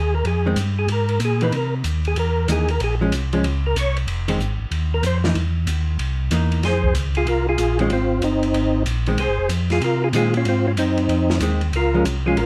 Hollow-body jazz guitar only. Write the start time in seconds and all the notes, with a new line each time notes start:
0.46 D#3 G#3 C4
1.42 E3 A#3 D#4
2.49 E3 A#3 D#4
3.01 F3 G#3 C#4
3.33 F3 G#3 C#4
4.28 D#3 G#3 C4
5.25 E3 A#3 D#4
6.32 E3 A#3 D#4
7.80 D#3 G#3 C4
9.08 D#3 G#3 C4
10.14 D#3 G#3 C4
11.41 D#3 G#3 C4
11.94 F3 G#3 C#4
12.26 F3 G#3 C#4